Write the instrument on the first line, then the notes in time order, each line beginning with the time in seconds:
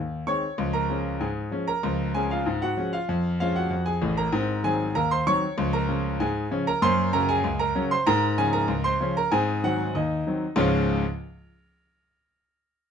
grand piano
Already playing: D#2
0.27 D#3 G#3 C4 C#5 C#6
0.58 C#2 F3
0.73 A#4 A#5
0.90 F3 G#3 C#4
1.20 G#2 G#4 G#5
1.51 F3 G#3 C#4
1.68 A#4 A#5
1.83 C#2 F3
2.15 F3 G#3 C#4 G#4 G#5
2.31 F4 F5
2.46 G#2
2.62 F#4 F#5
2.77 F3 G#3 C#4
2.93 F4 F5
3.09 F2
3.40 F3 G#3 C#4 F4 F5
3.56 F#4 F#5
3.70 F2
3.86 G#4 G#5
4.01 A1 A2
4.17 A#4 A#5
4.32 G#2 C4
4.64 D#3 F#3 C4 G#4 G#5
4.95 D#2 A#4 A#5
5.11 C5 C6
5.27 D#3 F#3 C4 C#5 C#6
5.58 C#2 F3
5.73 A#4 A#5
5.89 C#3 F3 C#4
6.20 G#2 G#4 G#5
6.51 C#3 F3 C#4
6.67 A#4 A#5
6.82 F#2 A#3 C5 C6
7.13 C#3 F#3 C#4 A#4 A#5
7.29 G#4 G#5
7.44 C#2
7.59 A#4 A#5
7.75 C#3 F#3 C#4
7.91 C5 C6
8.07 G#2 A#4 A#5
8.38 C#3 F3 C#4 G#4 G#5
8.53 A#4 A#5
8.68 C#2
8.84 C5 C6
9.00 C#3 F3 C#4
9.17 A#4 A#5
9.31 G#2 C4 G#4 G#5
9.64 D#3 F#3 C4 F#4 F#5
9.95 D#2 D#4 D#5
10.27 D#3 F#3 C4
10.56 C#2 G#2 F3 G#3 C#4 F4 C#5